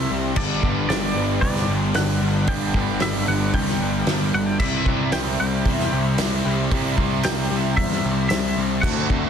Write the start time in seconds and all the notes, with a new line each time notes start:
Already playing: C3 G3 C4 E4 G4 E5 A5 C6
0.11 C2 C3 G3 C4 G4
0.36 G1 G2 D3 G3 B3 D4 D5 B5 D6, kick, crash
0.63 G1 G2 D3 G3 B3, kick
0.89 G1 G2 D3 G3 D5, snare, open hi-hat
1.15 G1 G2 D3 G3 B3
1.41 C2 G2 D3 G3 D4 D5, kick, open hi-hat
1.56 snare
1.69 G1 G2 D3 G3
1.94 G1 G2 D3 G3 D4 F#5, snare, open hi-hat
2.21 G1 G2 D3 G3
2.47 G1 G2 D3 G3 B3 D4 G5, kick, open hi-hat
2.74 G1 G2 D3 G3 B3, kick
3.00 G1 G2 D3 G3 E5, snare, open hi-hat
3.27 G1 G2 D3 G3 B3 F#5
3.53 C2 G2 D3 D4 G5, kick, open hi-hat
3.57 G3
3.67 snare
3.80 G1 G2 D3 G3
4.07 G1 G2 D3 G3 D4, snare, open hi-hat
4.34 G1 G2 D3 G3 F#4 F#5
4.47 G5
4.59 C2 C3 G3 C4 E4 E5 C6, kick, crash
4.86 C2 C3 G3 C4, kick
5.12 C2 C3 G3 C4 G5, snare, open hi-hat, tambourine
5.40 C2 C3 G3 C4 G5
5.65 E2 C3 G3 C4 E4, kick, open hi-hat
5.80 snare
5.92 C2 C3 G3 C4 G4
6.18 C2 C3 G3 C4 E4, snare, open hi-hat, tambourine
6.44 C2 C3 G3 C4 G4
6.71 C2 C3 G3 C4 E4 A5, kick, open hi-hat
6.97 C2 C3 G3 C4, kick
7.23 C2 C3 G3 C4 G5, snare, open hi-hat, tambourine
7.51 C2 C3 G3 C4
7.77 E2 C3 G3 C4 E4 E5, kick, open hi-hat
7.92 snare
8.04 C2 C3 G3 C4 G4
8.29 C2 C3 G3 C4 E4 E5, snare, open hi-hat, tambourine
8.57 C2 C3 G3 C4 G4
8.82 D2 D3 F#3 A3 C4 D4 F#4 D5 F#5, kick, crash
9.09 D2 D3 A3 C4 D4, kick